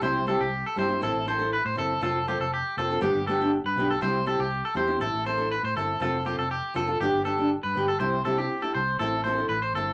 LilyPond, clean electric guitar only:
\new Staff \with { instrumentName = "Clean electric guitar" } { \time 4/4 \key c \major \tempo 4 = 120 c''8 a'16 g'8 a'16 c''8 a'8 c''8 b'16 c''16 a'8 | a'8 g'16 a'16 g'8 a'8 g'8 a'8 r16 b'8 a'16 | c''8 a'16 g'8 a'16 c''8 a'8 c''8 b'16 c''16 a'8 | a'8 g'16 a'16 g'8 a'8 g'8 a'8 r16 b'8 a'16 |
c''8 a'16 g'8 a'16 c''8 a'8 c''8 b'16 c''16 a'8 | }